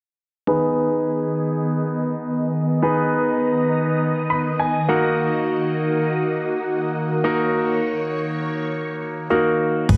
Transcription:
0.47 D#3 B3 D#4 G#4 B4 D#5
2.82 B3 D#4 G#4 B4 A#5
4.30 B5
4.59 G#5
4.89 A#3 D#4 F#4 A#4 F#5
7.24 A#3 D#4 F#4 A#4 C#5
9.30 A#3 D#4 F#4 A#4
9.89 G#1 B3 D#4 G#4 B4, kick, crash

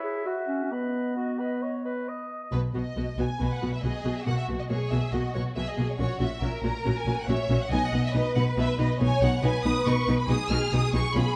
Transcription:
Already playing: E4 C#5
0.04 G#4
0.25 F#4 E5
0.48 C#4
0.64 C#4
0.71 B3 B4 D#5
1.16 F#4
1.39 B4
1.62 C#5
1.85 B4
2.08 D#5
2.44 D#5
2.52 B1 B2 B3 F#4 B4
2.74 B1 B2 B3 F#4 D#5
2.96 B1 B2 B3 F#4
3.18 B1 B2 B3 F#4 G#5
3.40 B1 B2 B3 F#4 B4
3.51 F#5
3.61 B1 B2 B3 F#4
3.73 E5
3.83 B1 B2 B3 F#4 G#4 D#5
4.05 B1 B2 B3 F#4
4.16 E5
4.26 B1 B2 A#3 F#4 F#5
4.37 E5
4.48 B1 B2 A#3 F#4
4.59 D#5
4.69 B1 B2 A#3 F#4 G#4 C#5
4.90 B1 B2 A#3 F#4 E5
5.12 B1 B2 A#3 F#4 D#5
5.33 B1 B2 A#3 F#4 C#5
5.55 B1 B2 A#3 F#4 G#4 E5
5.68 D#5
5.77 B1 B2 A#3 F#4
5.89 C#5
5.99 A#1 A#2 C#4 F#4 C#5
6.20 A#1 A#2 C#4 F#4 E5
6.42 A#1 A#2 C#4 F#4 A#4
6.63 A#1 A#2 C#4 F#4 A#5
6.85 A#1 A#2 C#4 F#4
6.97 G#5
7.06 A#1 A#2 C#4 F#4
7.19 F#5
7.27 A#1 A#2 C#4 F#4 C#5 E5
7.49 A#1 A#2 C#4 F#4
7.61 F#5
7.70 B1 B2 B3 D#4 D#5 G#5
7.83 F#5
7.92 B1 B2 B3 D#4
8.05 E5
8.13 B1 B2 B3 D#4 B4 D#5
8.35 B1 B2 B3 D#4 F#5
8.56 B1 B2 B3 D#4 E5
8.78 B1 B2 B3 D#4 D#5
9.00 B1 B2 B3 D#4 C#5 G#5
9.21 B1 B2 B3 D#4 F#5
9.42 B1 B2 B3 D#4 B4 G#5
9.64 B1 B2 B3 D#4 D#6
9.85 B1 B2 B3 D#4 C#6
10.07 B1 B2 B3 D#4
10.19 B5
10.27 B1 B2 B3 D#4 G#4 D#6
10.49 B1 B2 B3 D#4 F6
10.72 B1 B2 B3 D#4 D#6
10.93 B1 B2 B3 D#4 C#6
11.14 B1 B2 C#4 F4 G#4 B5

